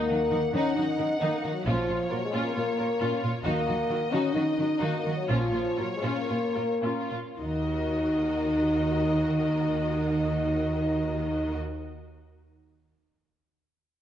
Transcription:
Already playing: french horn section A#3, violin section F#5
0.09 cello section D#3, viola section D#4, violin section F#4
0.31 cello section D#3, viola section D#4, violin section A#4
0.54 cello section D#3, french horn section C#4, viola section D#4, violin section D#4
0.76 cello section D#3, french horn section D#4, viola section D#4, violin section F#4
0.97 cello section D#3, viola section D#4, violin section A#4
1.20 cello section D#3, french horn section A#3, violin section D#4, viola section D#4
1.38 french horn section A#3
1.43 cello section D#3, viola section D#4, violin section F#4
1.53 french horn section F#3
1.66 double bass section A#1, cello section A#2, french horn section F3, violin section C#4 C#5, viola section F4
1.88 cello section A#2, violin section F4, viola section F4
2.11 cello section A#2, french horn section F#3, viola section F4, violin section A#4
2.26 french horn section G#3
2.32 cello section A#2, violin section C#4, viola section F4
2.42 french horn section A#3
2.54 cello section A#2, french horn section A#3, violin section F4, viola section F4
2.77 cello section A#2, viola section F4, violin section A#4
3.00 cello section A#2, violin section C#4, viola section F4
3.22 cello section A#2, viola section F4, violin section F4
3.44 double bass section D#2, cello section D#3, french horn section A#3, violin section D#4 D#5, viola section F#4
3.66 cello section D#3, viola section F#4, violin section F#4
3.89 cello section D#3, viola section F#4, violin section A#4
4.11 cello section D#3, french horn section C#4, violin section D#4, viola section F#4
4.33 cello section D#3, french horn section D#4, viola section F#4, violin section F#4
4.58 cello section D#3, viola section F#4, violin section A#4
4.80 cello section D#3, french horn section A#3, violin section D#4, viola section F#4
4.98 french horn section A#3
5.05 cello section D#3, violin section F#4, viola section F#4
5.15 french horn section F#3
5.29 double bass section A#1, cello section A#2, french horn section F3, violin section C#4 C#5, viola section F4
5.52 cello section A#2, violin section F4, viola section F4
5.77 cello section A#2, french horn section F#3, viola section F4, violin section A#4
5.96 french horn section G#3
6.01 cello section A#2, violin section C#4, viola section F4
6.14 french horn section A#3
6.28 cello section A#2, french horn section A#3, violin section F4, viola section F4
6.53 cello section A#2, viola section F4, violin section A#4
6.81 cello section A#2, violin section C#4, viola section F4
7.10 cello section A#2, viola section F4, violin section F4
7.38 double bass section D#2, cello section D#3, french horn section D#4, viola section F#4, violin section A#4 D#5

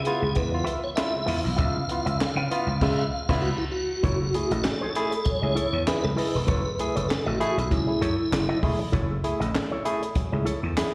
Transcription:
Already playing: tonewheel organ G#4
0.04 tine electric piano B3 E4 F4, muted clean electric guitar stroke, closed hi-hat
0.20 slap bass C#2, muted clean electric guitar stroke
0.35 slap bass E2, tine electric piano C#3 G#3, tonewheel organ B4, muted clean electric guitar stroke, kick, closed hi-hat
0.52 tine electric piano B3 E4 F4, muted clean electric guitar stroke
0.64 tine electric piano E4 F4, clean electric guitar F4 B4 E5, tonewheel organ B4, closed hi-hat
0.82 tonewheel organ C#5, muted clean electric guitar stroke
0.96 tine electric piano E4 F4, tonewheel organ E5, muted clean electric guitar stroke, snare, clap, closed hi-hat
1.15 tine electric piano C#3 G#3
1.26 slap bass E2, tine electric piano E4 F4, clean electric guitar F4 B4 F5, open hi-hat
1.44 slap bass B1, tonewheel organ F5, muted clean electric guitar stroke
1.56 slap bass C#2, tine electric piano C#3 G#3, clean electric guitar F4 B4 E5, kick, closed hi-hat
1.75 tine electric piano E4 F4, muted clean electric guitar stroke
1.89 tine electric piano B3 E4 F4, muted clean electric guitar stroke, closed hi-hat
2.06 slap bass C#2, clean electric guitar F4 B4 E5, closed hi-hat
2.19 muted clean electric guitar stroke, muted slap bass stroke, snare, clap, closed hi-hat
2.36 slap bass C#3, clean electric guitar F4 B4 F5
2.51 tine electric piano B3 E4 F4, muted clean electric guitar stroke, closed hi-hat
2.67 slap bass C#2, muted clean electric guitar stroke
2.81 slap bass C#2, tine electric piano C#3 G#3, clean electric guitar F4 B4 E5, kick, snare, crash
3.29 slap bass C#2, tine electric piano B3 E4 F4, clean electric guitar F4 B4 E5, kick, snare, crash
3.42 tonewheel organ F#4
3.58 tonewheel organ E4
3.71 tonewheel organ F#4
4.03 slap bass F#1, tine electric piano F#3, clean electric guitar E4 A4 C#5, kick, closed hi-hat
4.21 tine electric piano E4 G#4, muted clean electric guitar stroke
4.34 tine electric piano A3 E4 G#4, muted clean electric guitar stroke, closed hi-hat
4.51 slap bass A1, clean electric guitar E4 A4 D#5, closed hi-hat
4.64 tonewheel organ A4, muted clean electric guitar stroke, snare, clap, closed hi-hat
4.81 clean electric guitar E4 A4 C#5
4.95 tine electric piano A3 E4 G#4, muted clean electric guitar stroke, closed hi-hat
5.11 muted clean electric guitar stroke, closed hi-hat
5.25 tine electric piano F#3, tonewheel organ C#5, muted clean electric guitar stroke, muted slap bass stroke, kick, closed hi-hat
5.42 slap bass C#2, tine electric piano A3 E4 G#4, muted clean electric guitar stroke
5.55 clean electric guitar E4 A4 C#5, tine electric piano E4 G#4, closed hi-hat
5.72 slap bass E2, muted clean electric guitar stroke
5.86 tine electric piano E4 G#4, tonewheel organ B4, muted clean electric guitar stroke, muted slap bass stroke, snare, clap, closed hi-hat
6.04 slap bass C#2, tine electric piano F#3, tonewheel organ A4
6.16 clean electric guitar E4 A4 D#5, tine electric piano E4 G#4, tonewheel organ B4, open hi-hat
6.34 slap bass E1, muted clean electric guitar stroke
6.47 slap bass F#1, tine electric piano F#3, clean electric guitar E4 A4 C#5, kick, closed hi-hat
6.65 tine electric piano E4 G#4, muted clean electric guitar stroke
6.79 tine electric piano A3 E4 G#4, muted clean electric guitar stroke, closed hi-hat
6.96 slap bass F#1, clean electric guitar E4 A4 C#5, closed hi-hat
7.08 tonewheel organ A4, muted clean electric guitar stroke, snare, clap, closed hi-hat
7.26 slap bass A1, clean electric guitar E4 A4 D#5, tonewheel organ F#4
7.40 tine electric piano A3 E4 G#4, tonewheel organ F#4, muted clean electric guitar stroke, closed hi-hat
7.58 slap bass B1, muted clean electric guitar stroke, closed hi-hat
7.71 slap bass C#2, tine electric piano F#3, tonewheel organ E4, muted clean electric guitar stroke, kick, closed hi-hat
7.87 tine electric piano A3 E4 G#4, muted clean electric guitar stroke
8.01 slap bass F#2, clean electric guitar E4 A4 C#5, tine electric piano E4 G#4, closed hi-hat
8.18 muted clean electric guitar stroke
8.31 slap bass F#1, tine electric piano E4 G#4, muted clean electric guitar stroke, snare, clap, closed hi-hat
8.49 tine electric piano F#3, clean electric guitar E4 A4 D#5
8.63 slap bass E1, tine electric piano A3 E4 G#4, kick, open hi-hat
8.79 muted clean electric guitar stroke
8.92 slap bass F#1, tine electric piano F#3, clean electric guitar E4 A4 C#5, kick, closed hi-hat
9.09 tine electric piano E4 G#4, muted clean electric guitar stroke
9.24 tine electric piano A3 E4 G#4, muted clean electric guitar stroke, closed hi-hat
9.40 slap bass A1, clean electric guitar E4 A4 D#5, closed hi-hat
9.54 muted clean electric guitar stroke, snare, clap, closed hi-hat
9.71 clean electric guitar E4 A4 C#5
9.85 tine electric piano A3 E4 G#4, muted clean electric guitar stroke, closed hi-hat
10.02 muted clean electric guitar stroke, closed hi-hat
10.15 tine electric piano F#3, muted slap bass stroke, muted clean electric guitar stroke, kick, closed hi-hat
10.32 slap bass C#2, tine electric piano A3 E4 G#4, muted clean electric guitar stroke
10.45 clean electric guitar E4 A4 C#5, tine electric piano E4 G#4, closed hi-hat
10.62 slap bass E2, muted clean electric guitar stroke
10.77 tine electric piano E4 G#4, muted clean electric guitar stroke, muted slap bass stroke, snare, clap, closed hi-hat

